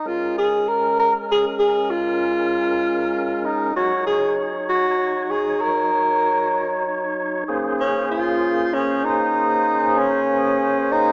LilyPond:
<<
  \new Staff \with { instrumentName = "Tenor saxophone" } { \time 12/8 \key bes \minor \tempo 4. = 65 f'8 aes'8 bes'8 bes'8 aes'8 aes'8 f'2~ f'8 ees'8 | ges'8 aes'8 r8 ges'4 aes'8 bes'2 r4 | r8 des'8 f'4 des'8 ees'4. des'4. ees'8 | }
  \new Staff \with { instrumentName = "Tonewheel organ" } { \time 12/8 \key bes \minor <aes des' bes'>1. | <ges ees' des''>1. | <bes des' aes' c''>1. | }
>>